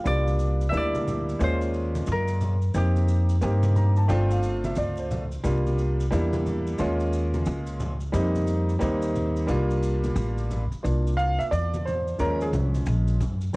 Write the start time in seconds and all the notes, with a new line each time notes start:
Already playing: C5 F5 G5
0.04 C2 G3 A#3 D4 F4 D5, maracas
0.27 high conga, maracas
0.39 maracas
0.61 maracas
0.69 D2 G3 A#3 D4 E5
0.73 E4 D5, maracas
0.95 high conga, maracas
1.08 low conga, maracas
1.29 maracas
1.39 D#2 G#3 A#3 C#4 F4, maracas
1.43 C5
1.61 maracas
1.73 maracas
1.95 high conga, maracas
2.06 F#2, maracas
2.12 A#4
2.28 maracas
2.41 low conga, maracas
2.62 maracas
2.74 F2 A#3 C4 D#4 G4, maracas
2.96 high conga, maracas
3.08 maracas
3.29 maracas
3.41 G2 A#3 C4 D#4 G4, maracas
3.63 high conga, maracas
3.76 A#5, low conga, maracas
3.96 A5, maracas
4.08 G1 A3 C4 D4 F4 G5, maracas
4.31 F5, maracas
4.43 maracas
4.64 E5, high conga, maracas
4.76 C#2 D5, maracas
4.97 C5, maracas
5.11 low conga, maracas
5.32 maracas
5.44 C2 G3 A#3 D4 F4, maracas
5.67 high conga, maracas
5.79 maracas
6.00 maracas
6.11 E2 G3 A#3 D4 E4, maracas
6.33 high conga, maracas
6.46 low conga, maracas
6.67 maracas
6.78 D#2 G#3 A#3 C#4 F4, maracas
7.00 maracas
7.13 maracas
7.34 high conga, maracas
7.46 C#2, maracas
7.67 maracas
7.80 low conga, maracas
8.00 maracas
8.12 F2 G3 A#3 C4 D#4, maracas
8.35 high conga, maracas
8.47 maracas
8.69 maracas
8.79 D#2 G3 A#3 C4 D#4, high conga, maracas
9.02 maracas
9.15 low conga, maracas
9.36 maracas
9.47 C2 G3 A#3 D4 F4, maracas
9.70 maracas
9.83 maracas
10.04 high conga, maracas
10.16 A1, maracas
10.38 maracas
10.51 low conga, maracas
10.71 muted upright bass stroke, maracas
10.83 C2 A#3 D4 F4, maracas
11.07 maracas
11.17 F5, maracas
11.39 E5, muted upright bass stroke, maracas
11.51 E2 D5, maracas
11.74 high conga, maracas
11.86 C5, low conga, maracas
12.08 maracas
12.18 D#2 F3 G#3 C#4 A#4, maracas
12.41 G#4, maracas
12.53 C2, low conga, maracas
12.75 high conga, maracas
12.86 A#1, maracas
13.07 maracas
13.20 F#2, low conga, maracas
13.41 maracas